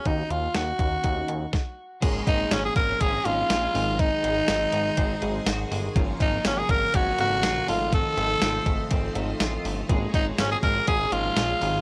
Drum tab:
CC |--------|x-------|--------|--------|
HH |xxxxxx--|xxxxxxxo|xxxxxxxo|xxxxxxxo|
TB |--------|--x---x-|--x---x-|--x---x-|
SD |--o---o-|--o---o-|--o---o-|--o---o-|
BD |o--oo-o-|oo-oo---|o---o---|oo-oo---|

CC |--------|--------|
HH |xxxxxxxo|xxxxxxxo|
TB |--x---x-|--x---x-|
SD |--o---o-|--o---o-|
BD |o--oo---|oo-oo---|